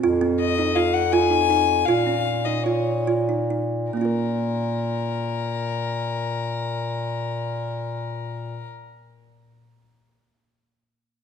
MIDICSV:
0, 0, Header, 1, 4, 480
1, 0, Start_track
1, 0, Key_signature, -5, "minor"
1, 0, Tempo, 367872
1, 37, Time_signature, 5, 2, 24, 8
1, 2436, Tempo, 390625
1, 3396, Tempo, 417537
1, 4356, Tempo, 454201
1, 12549, End_track
2, 0, Start_track
2, 0, Title_t, "Violin"
2, 0, Program_c, 0, 40
2, 520, Note_on_c, 0, 75, 78
2, 984, Note_on_c, 0, 77, 77
2, 1003, Note_off_c, 0, 75, 0
2, 1215, Note_on_c, 0, 78, 77
2, 1234, Note_off_c, 0, 77, 0
2, 1456, Note_on_c, 0, 80, 85
2, 1476, Note_off_c, 0, 78, 0
2, 2411, Note_on_c, 0, 77, 80
2, 2431, Note_off_c, 0, 80, 0
2, 3149, Note_on_c, 0, 75, 65
2, 3168, Note_off_c, 0, 77, 0
2, 3380, Note_on_c, 0, 73, 55
2, 3398, Note_off_c, 0, 75, 0
2, 3859, Note_off_c, 0, 73, 0
2, 4822, Note_on_c, 0, 70, 63
2, 9834, Note_off_c, 0, 70, 0
2, 12549, End_track
3, 0, Start_track
3, 0, Title_t, "Kalimba"
3, 0, Program_c, 1, 108
3, 46, Note_on_c, 1, 65, 74
3, 248, Note_off_c, 1, 65, 0
3, 278, Note_on_c, 1, 60, 64
3, 689, Note_off_c, 1, 60, 0
3, 763, Note_on_c, 1, 63, 62
3, 963, Note_off_c, 1, 63, 0
3, 990, Note_on_c, 1, 65, 64
3, 1403, Note_off_c, 1, 65, 0
3, 1473, Note_on_c, 1, 65, 76
3, 1677, Note_off_c, 1, 65, 0
3, 1704, Note_on_c, 1, 63, 58
3, 1914, Note_off_c, 1, 63, 0
3, 1956, Note_on_c, 1, 63, 65
3, 2378, Note_off_c, 1, 63, 0
3, 2456, Note_on_c, 1, 65, 71
3, 2651, Note_off_c, 1, 65, 0
3, 2680, Note_on_c, 1, 61, 54
3, 3093, Note_off_c, 1, 61, 0
3, 3166, Note_on_c, 1, 63, 53
3, 3373, Note_off_c, 1, 63, 0
3, 3410, Note_on_c, 1, 65, 59
3, 3813, Note_off_c, 1, 65, 0
3, 3885, Note_on_c, 1, 65, 63
3, 4087, Note_off_c, 1, 65, 0
3, 4132, Note_on_c, 1, 63, 52
3, 4336, Note_off_c, 1, 63, 0
3, 4378, Note_on_c, 1, 63, 53
3, 4776, Note_off_c, 1, 63, 0
3, 4832, Note_on_c, 1, 58, 45
3, 4872, Note_on_c, 1, 61, 45
3, 4915, Note_on_c, 1, 65, 47
3, 4955, Note_on_c, 1, 70, 43
3, 9843, Note_off_c, 1, 58, 0
3, 9884, Note_off_c, 1, 61, 0
3, 9927, Note_off_c, 1, 65, 0
3, 9966, Note_off_c, 1, 70, 0
3, 12549, End_track
4, 0, Start_track
4, 0, Title_t, "Bass clarinet"
4, 0, Program_c, 2, 71
4, 37, Note_on_c, 2, 41, 69
4, 2389, Note_off_c, 2, 41, 0
4, 2437, Note_on_c, 2, 46, 62
4, 4783, Note_off_c, 2, 46, 0
4, 4820, Note_on_c, 2, 46, 62
4, 9831, Note_off_c, 2, 46, 0
4, 12549, End_track
0, 0, End_of_file